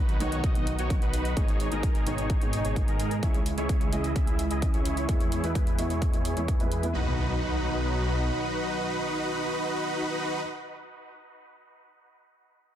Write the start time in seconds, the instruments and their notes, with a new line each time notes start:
Already playing: detuned saw bass B1, analog synth pad D#3 B3 F#4, supersaw synth D#4 F#4 B4
0.09 closed hi-hat
0.20 detuned saw bass B1, grand piano D#3 F#3 B3 D#4, supersaw synth D#4 F#4 C#5, closed hi-hat
0.32 closed hi-hat
0.44 detuned saw bass B1, supersaw synth D#4 F#4 D#5, kick, closed hi-hat
0.55 grand piano D#3 F#3 B3 D#4, closed hi-hat
0.67 closed hi-hat
0.79 detuned saw bass B1, supersaw synth D#4 F#4 C#5, closed hi-hat
0.90 grand piano D#3 F#3 B3 D#4, kick, closed hi-hat
1.02 detuned saw bass B1, supersaw synth D#4 F#4 B4, closed hi-hat
1.14 closed hi-hat
1.25 closed hi-hat
1.36 detuned saw bass G#1, grand piano G#2 D#3 G#3 B3 D#4, analog synth pad B2 G#3 D#4, supersaw synth D#4 G#4 C#5, kick, closed hi-hat
1.48 closed hi-hat
1.60 closed hi-hat
1.71 detuned saw bass G#1, grand piano G#2 D#3 G#3 B3 D#4, supersaw synth D#4 G#4 A#4, closed hi-hat
1.83 kick, closed hi-hat
1.95 closed hi-hat
2.06 detuned saw bass G#1, grand piano G#2 D#3 G#3 B3 D#4, supersaw synth D#4 G#4 C#5, closed hi-hat
2.18 closed hi-hat
2.30 kick, closed hi-hat
2.41 grand piano G#2 D#3 G#3 B3 D#4, closed hi-hat
2.53 closed hi-hat
2.65 detuned saw bass G#1, supersaw synth D#4 G#4 C#5, closed hi-hat
2.76 grand piano G#2 D#3 G#3 B3 D#4, kick, closed hi-hat
2.88 detuned saw bass G#2, supersaw synth D#4 G#4 A#4, closed hi-hat
3.00 closed hi-hat
3.11 closed hi-hat
3.22 detuned saw bass C#2, analog synth pad C#3 E4, grand piano E3 G#3 C#4 E4, supersaw synth E4 G#4 C#5, kick, closed hi-hat
3.34 closed hi-hat
3.46 closed hi-hat
3.57 detuned saw bass C#2, grand piano E3 G#3 C#4 E4, supersaw synth E4 G#4 C#5, closed hi-hat
3.69 kick, closed hi-hat
3.81 closed hi-hat
3.92 detuned saw bass C#2, grand piano E3 G#3 C#4 E4, supersaw synth E4 G#4 D#5, closed hi-hat
4.04 closed hi-hat
4.16 detuned saw bass C#2, supersaw synth G#4, kick, closed hi-hat
4.27 grand piano E3 G#3 C#4 E4, closed hi-hat
4.39 closed hi-hat
4.51 detuned saw bass C#2, supersaw synth E4 G#4 D#5, closed hi-hat
4.62 grand piano E3 G#3 C#4 E4, kick, closed hi-hat
4.74 detuned saw bass C#2, supersaw synth E4 G#4 C#5, closed hi-hat
4.85 closed hi-hat
4.97 closed hi-hat
5.08 detuned saw bass E2, analog synth pad B2, grand piano E3 G#3 B3 E4, supersaw synth E4 G#4, kick, closed hi-hat
5.20 closed hi-hat
5.32 closed hi-hat
5.43 detuned saw bass E2, grand piano E3 G#3 B3 E4, supersaw synth E4 G#4 B4, closed hi-hat
5.55 kick, closed hi-hat
5.67 closed hi-hat
5.78 detuned saw bass E2, grand piano E3 G#3 B3 E4, supersaw synth E4 G#4 C#5, closed hi-hat
5.90 closed hi-hat
6.02 kick, closed hi-hat
6.13 grand piano E3 G#3 B3 E4, closed hi-hat
6.25 closed hi-hat
6.36 detuned saw bass E2, grand piano E3 G#3 B3 E4, supersaw synth E4 G#4 C#5, closed hi-hat
6.48 kick, closed hi-hat
6.59 detuned saw bass E2, grand piano E3 G#3 B3 E4, supersaw synth E4 G#4 B4, closed hi-hat
6.72 closed hi-hat
6.83 grand piano E3 G#3 B3 E4, closed hi-hat
6.93 detuned saw bass B1, analog synth pad B2 F#3 D#4, grand piano D#3 F#3 B3 D#4, supersaw synth D#4 F#4 B4, impact